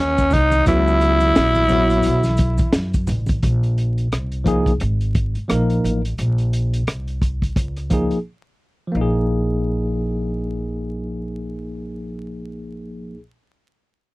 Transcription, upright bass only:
0.00 0.31 D#2 medium
0.34 0.66 C2 loud
0.67 1.32 C#2 loud
1.37 2.02 A#1 medium
2.06 2.57 B1 medium
2.60 muted upright bass stroke soft
2.74 3.07 F#2 medium
3.08 3.41 A1 medium
3.43 4.08 A#1 loud
4.12 4.77 C2 medium
4.81 5.33 G#1 loud
5.36 muted upright bass stroke soft
5.50 5.82 A#1 medium
5.84 6.17 A1 medium
6.19 6.84 A#1 loud
6.88 7.53 C2 medium
7.56 8.08 C#2 medium
8.11 muted upright bass stroke soft
8.95 13.16 A#1 medium

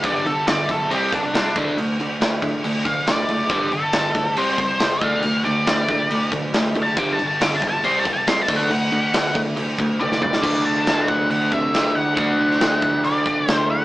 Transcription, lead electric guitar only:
0.05 0.25 D5 loud
0.27 0.47 A4 medium
0.47 0.68 D5 medium
0.71 0.91 A4 medium
0.92 1.12 G4 medium
1.14 1.34 D4 medium
1.35 1.55 D4 medium
2.85 3.06 F5 loud
3.07 3.70 D5 medium
3.73 4.35 A4 loud
4.38 5.03 C5 medium
5.03 5.44 F5 medium
5.45 6.29 D5 medium
6.83 6.96 A5 loud
6.98 7.12 D6 loud
7.12 7.26 A5 loud
7.27 7.41 A5 loud
7.42 7.55 D6 medium
7.55 7.67 A5 loud
7.69 7.83 A5 loud
7.84 7.98 C6 loud
7.99 8.12 A5 loud
8.13 8.27 A5 loud
8.28 8.41 C6 medium
8.42 8.56 A5 loud
8.56 9.40 F#5 loud
10.00 10.22 D5 medium
10.23 10.63 D5 loud
10.65 11.06 A5 loud
11.08 11.29 F#5 medium
11.31 11.53 F#5 loud
11.53 11.97 E5 medium
11.95 12.14 F#5 medium
12.16 13.06 F#5 loud
13.04 13.50 D5 medium
13.50 13.66 C5 medium
13.70 13.85 F#5 loud

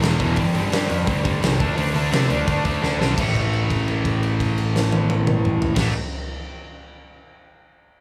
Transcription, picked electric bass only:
0.02 0.16 E1 medium
0.20 0.34 E1 medium
0.37 0.51 G1 medium
0.55 0.68 G1 medium
0.72 0.86 G2 medium
0.90 1.04 F2 medium
1.07 1.34 D2 medium
1.43 1.56 C2 medium
1.60 1.74 D2 medium
1.78 1.91 D2 medium
1.95 2.08 D2 medium
2.12 2.26 C3 medium
2.30 2.43 D2 medium
2.48 2.61 D2 medium
2.65 2.79 D2 medium
2.83 2.96 D2 medium
2.99 3.13 B1 medium
3.18 5.69 A1 medium
5.77 5.91 A1 medium

